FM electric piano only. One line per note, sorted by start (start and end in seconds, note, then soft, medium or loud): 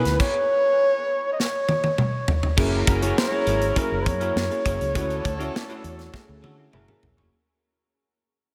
0.00 0.22 B3 medium
0.00 0.22 D#4 medium
0.00 0.22 E4 medium
0.00 0.21 F#4 medium
0.00 0.22 G#4 medium
2.57 2.98 A#3 medium
2.57 2.99 C#4 medium
2.57 2.99 E4 medium
2.57 2.99 G#4 medium
3.02 3.29 A#3 medium
3.02 3.29 C#4 medium
3.02 3.30 E4 medium
3.02 3.30 G#4 medium
3.31 3.72 A#3 medium
3.31 3.73 C#4 medium
3.31 3.73 E4 medium
3.31 3.73 G#4 medium
3.76 4.17 A#3 medium
3.76 4.17 C#4 medium
3.76 4.17 E4 medium
3.76 4.17 G#4 medium
4.20 4.48 A#3 medium
4.20 4.48 C#4 medium
4.20 4.48 E4 medium
4.20 4.49 F#4 medium
4.50 4.91 A#3 medium
4.50 4.91 C#4 medium
4.50 4.92 E4 medium
4.50 4.92 G#4 medium
4.94 5.35 A3 medium
4.94 5.36 C#4 medium
4.94 5.36 E4 medium
4.94 5.36 F#4 medium
5.39 5.66 A3 medium
5.39 5.67 C#4 medium
5.39 5.67 E4 medium
5.39 5.67 F#4 loud
5.69 6.10 A3 medium
5.69 6.10 C#4 medium
5.69 6.10 E4 medium
5.69 6.10 F#4 medium
6.13 6.54 A3 medium
6.13 6.54 C#4 medium
6.13 6.55 E4 medium
6.13 6.55 G#4 loud
6.58 6.73 A3 medium
6.58 6.72 C#4 medium
6.58 6.73 E4 medium
6.58 6.74 F#4 medium
6.73 6.87 A#3 medium
6.73 6.87 C#4 medium
6.73 6.87 E4 medium
6.73 6.87 G#4 medium
6.88 7.29 A#3 medium
6.88 7.29 C#4 medium
6.88 7.29 E4 medium
6.88 7.29 G#4 loud